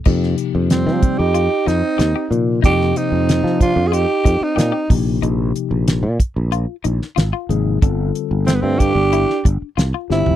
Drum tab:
CC |x---------------|----------------|----------------|----------------|
HH |--x-x-x-x-x-x-x-|x-x-x-x-x-x-x-o-|x-x-x-x-x-x-x-x-|x-x-x-x-x-x-x---|
SD |-o--oo----o-o---|-o--oo------o---|----o------oo---|----o----o--o-o-|
FT |----------------|----------------|----------------|---------------o|
BD |o-----o---------|o-----o---o---o-|------o---------|o-----o---o-----|